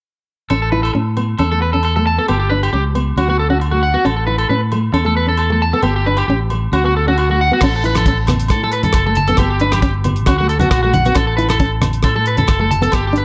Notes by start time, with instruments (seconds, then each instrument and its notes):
0.50 fingered electric bass A1, nylon-string guitar C#4, clean electric guitar A4, low agogo
0.62 clean electric guitar A4
0.72 nylon-string guitar E4, clean electric guitar B4
0.83 clean electric guitar A4, low agogo
0.94 fingered electric bass A2, nylon-string guitar C#4, muted clean electric guitar stroke
1.17 nylon-string guitar B3, low agogo
1.38 fingered electric bass E2, nylon-string guitar C#4, clean electric guitar A4, low agogo
1.52 nylon-string guitar A3, clean electric guitar A4
1.62 clean electric guitar B4
1.73 nylon-string guitar C#4, clean electric guitar A4
1.83 clean electric guitar A4, low agogo
1.96 nylon-string guitar A3, clean electric guitar A4
2.07 clean electric guitar A5
2.18 nylon-string guitar B3, clean electric guitar A4
2.28 fingered electric bass G1, nylon-string guitar B3, clean electric guitar G4, low agogo
2.40 clean electric guitar G4
2.50 nylon-string guitar D4, clean electric guitar B4
2.63 clean electric guitar G4, low agogo
2.73 fingered electric bass C#2, nylon-string guitar C#4, clean electric guitar G4
2.95 nylon-string guitar B3, low agogo
3.16 fingered electric bass D2, nylon-string guitar C#4, clean electric guitar F#4, low agogo
3.28 nylon-string guitar B3, clean electric guitar F#4
3.39 clean electric guitar A4
3.50 nylon-string guitar C#4, clean electric guitar F#4
3.60 muted clean electric guitar stroke, low agogo
3.71 nylon-string guitar A3, clean electric guitar F#4
3.83 clean electric guitar F#5
3.94 nylon-string guitar B3, clean electric guitar F#4
4.05 fingered electric bass A1, nylon-string guitar C#4, clean electric guitar A4, low agogo
4.17 clean electric guitar A4
4.27 nylon-string guitar E4, clean electric guitar B4
4.38 clean electric guitar A4, low agogo
4.49 fingered electric bass A2, nylon-string guitar C#4, clean electric guitar B4
4.72 nylon-string guitar A3, low agogo
4.93 fingered electric bass E2, nylon-string guitar C#4, clean electric guitar A4, low agogo
5.05 nylon-string guitar A3, clean electric guitar A4
5.17 clean electric guitar B4
5.27 nylon-string guitar C#4, clean electric guitar A4
5.37 clean electric guitar A4, low agogo
5.50 nylon-string guitar A3, clean electric guitar A4
5.62 clean electric guitar A5
5.73 nylon-string guitar B3, clean electric guitar A4
5.83 fingered electric bass G1, nylon-string guitar B3, clean electric guitar G4, low agogo
5.96 clean electric guitar G4
6.06 nylon-string guitar D4, clean electric guitar B4
6.17 clean electric guitar G4, low agogo
6.28 fingered electric bass A1, nylon-string guitar C#4, clean electric guitar G4
6.50 muted nylon-string guitar stroke, low agogo
6.72 fingered electric bass D2, nylon-string guitar C#4, clean electric guitar F#4, low agogo
6.84 nylon-string guitar B3, clean electric guitar F#4
6.97 clean electric guitar A4
7.08 nylon-string guitar C#4, clean electric guitar F#4
7.18 clean electric guitar F#4, low agogo
7.30 nylon-string guitar A3, clean electric guitar F#4
7.41 clean electric guitar F#5
7.52 nylon-string guitar B3, clean electric guitar F#4
7.61 fingered electric bass A1, nylon-string guitar C#4, clean electric guitar A4, kick, cross-stick, crash, low agogo
7.76 clean electric guitar A4
7.84 nylon-string guitar E4, clean electric guitar B4, closed hi-hat
7.95 clean electric guitar A4, cross-stick, closed hi-hat, high conga, low agogo
8.06 nylon-string guitar C#4, clean electric guitar A4, kick, closed hi-hat
8.27 nylon-string guitar B3, cross-stick, closed hi-hat, high conga, low conga, low agogo
8.40 closed hi-hat
8.48 fingered electric bass A2, clean electric guitar A4, muted nylon-string guitar stroke, kick, cross-stick, closed hi-hat, low agogo
8.63 nylon-string guitar A3, clean electric guitar A4
8.72 clean electric guitar B4, closed hi-hat
8.83 clean electric guitar A4, closed hi-hat, high conga, low conga
8.93 fingered electric bass F#1, clean electric guitar A4, kick, cross-stick, closed hi-hat, low agogo
9.06 nylon-string guitar A3, clean electric guitar A4
9.15 clean electric guitar A5, closed hi-hat, low conga
9.28 nylon-string guitar B3, clean electric guitar A4, closed hi-hat, high conga
9.37 fingered electric bass G1, nylon-string guitar B3, clean electric guitar G4, kick, cross-stick, closed hi-hat, low agogo
9.50 clean electric guitar G4
9.60 nylon-string guitar D4, clean electric guitar B4, closed hi-hat
9.72 clean electric guitar G4, cross-stick, closed hi-hat, high conga, low agogo
9.82 nylon-string guitar C#4, clean electric guitar G4, kick, closed hi-hat
10.04 nylon-string guitar B3, closed hi-hat, low conga, low agogo
10.16 closed hi-hat
10.26 fingered electric bass D2, nylon-string guitar C#4, clean electric guitar F#4, kick, cross-stick, closed hi-hat, low agogo
10.38 nylon-string guitar A3, clean electric guitar F#4
10.49 clean electric guitar A4, closed hi-hat
10.60 nylon-string guitar B3, clean electric guitar F#4, closed hi-hat, high conga, low conga
10.71 fingered electric bass A#1, clean electric guitar F#4, kick, cross-stick, closed hi-hat, low agogo
10.83 nylon-string guitar A3, clean electric guitar F#4
10.93 clean electric guitar F#5, closed hi-hat, high conga, low conga
11.05 nylon-string guitar B3, clean electric guitar F#4, closed hi-hat, high conga
11.15 fingered electric bass A1, nylon-string guitar C#4, clean electric guitar A4, kick, cross-stick, closed hi-hat, low agogo
11.27 clean electric guitar A4
11.37 nylon-string guitar E4, clean electric guitar B4, closed hi-hat
11.49 clean electric guitar A4, cross-stick, closed hi-hat, high conga, low agogo
11.59 nylon-string guitar C#4, clean electric guitar A4, kick, closed hi-hat
11.81 nylon-string guitar B3, cross-stick, closed hi-hat, high conga, low conga, low agogo
11.93 closed hi-hat
12.03 fingered electric bass A2, nylon-string guitar C#4, clean electric guitar A4, kick, cross-stick, closed hi-hat, low agogo
12.15 nylon-string guitar A3, clean electric guitar A4
12.26 clean electric guitar B4, closed hi-hat
12.37 nylon-string guitar C#4, clean electric guitar A4, closed hi-hat, high conga, low conga
12.48 fingered electric bass F#1, clean electric guitar A4, kick, cross-stick, closed hi-hat, low agogo
12.60 nylon-string guitar A3, clean electric guitar A4
12.71 clean electric guitar A5, closed hi-hat, low conga
12.82 nylon-string guitar B3, clean electric guitar A4, closed hi-hat, high conga
12.92 fingered electric bass G1, nylon-string guitar B3, clean electric guitar G4, kick, cross-stick, closed hi-hat, low agogo
13.07 clean electric guitar G4
13.13 nylon-string guitar D4, closed hi-hat
13.18 clean electric guitar B4